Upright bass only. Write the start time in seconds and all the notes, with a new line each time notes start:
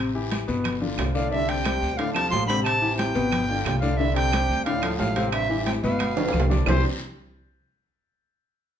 Already playing: A1
0.48 G1
0.98 C2
1.82 D2
2.31 A1
3.15 G1
3.65 C2
4.49 D2
4.99 A1
5.83 G1
6.33 C2
6.67 C2